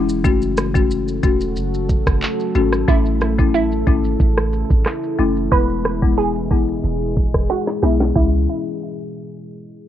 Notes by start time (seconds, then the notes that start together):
Already playing: E1 C#3 E3 G#3 E4 G#4
0.09 shaker
0.24 F#1 F#3 A3 C#4 F#4 A4, kick, shaker
0.42 shaker
0.57 cross-stick, closed hi-hat, shaker
0.75 A3 C#4 F#4, kick, shaker
0.91 shaker
1.08 shaker
1.23 E1 A3 C#4 F#4, kick, closed hi-hat, shaker
1.41 shaker
1.56 F#1, shaker
1.74 shaker
1.89 kick, closed hi-hat, shaker
2.07 F#1, kick, cross-stick, shaker
2.22 clap, shaker
2.40 shaker
2.55 G#1 A3 C#4 F#4, closed hi-hat, shaker
2.73 cross-stick, shaker
2.88 A1 C#3 E3 A3 C#4 E4, kick, shaker
3.06 shaker
3.21 cross-stick, closed hi-hat, shaker
3.38 A3 C#4 E4, kick, shaker
3.54 E4, shaker
3.72 shaker
3.87 G#1 A3 C#4 E4, kick, closed hi-hat, shaker
4.04 shaker
4.20 A1, kick, shaker
4.38 cross-stick, shaker
4.53 closed hi-hat, shaker
4.71 A1, kick, shaker
4.86 cross-stick, clap, shaker
5.04 shaker
5.19 F#1 A3 C#4 E4, closed hi-hat, shaker
5.37 shaker
5.52 E1 B2 G#3 B3 E4 G#4 B4, kick, shaker
5.69 shaker
5.85 cross-stick, closed hi-hat, shaker
6.02 G#3 B3 E4, kick, shaker
6.18 G#4, shaker
6.36 shaker
6.51 F#1 G#3 B3 E4, kick, closed hi-hat, shaker
6.68 shaker
6.84 E1, shaker
7.02 shaker
7.17 kick, closed hi-hat, shaker
7.34 E1, kick, cross-stick, shaker
7.50 F#4, snare, shaker
7.67 snare, shaker
7.83 B1 G#3 B3 E4, snare, closed hi-hat, shaker
8.00 snare, shaker
8.15 C#2 G#3 C#4 E4, kick, crash